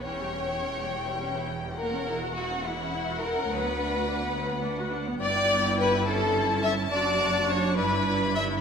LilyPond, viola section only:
\new Staff \with { instrumentName = "Viola section" } { \time 6/8 \key b \minor \tempo 4. = 70 << { e16 g16 cis'16 e'16 cis'16 g16 e16 g16 cis'16 e'16 cis'16 g16 | ais16 cis'16 e'16 fis'16 e'16 cis'16 ais16 cis'16 e'16 fis'16 e'16 cis'16 | fis16 b16 d'16 fis'16 d'16 b16 fis16 b16 d'16 fis'16 d'16 b16 | \key e \dorian e'2. |
fis'4. e'4. | } \\ { cis'2.~ | cis'2. | b2. | b4. cis'4. |
d'2. | } >> }